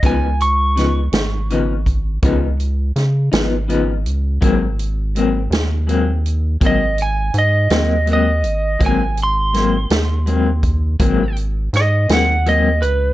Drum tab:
HH |xxxxxxxxxxxx|xxxxxxxxxxxx|xxxxxxxxxxxx|
SD |--oo----oo--|---o-----o--|--oo----oo--|
BD |o----oo-----|o-----o-----|o----oo-----|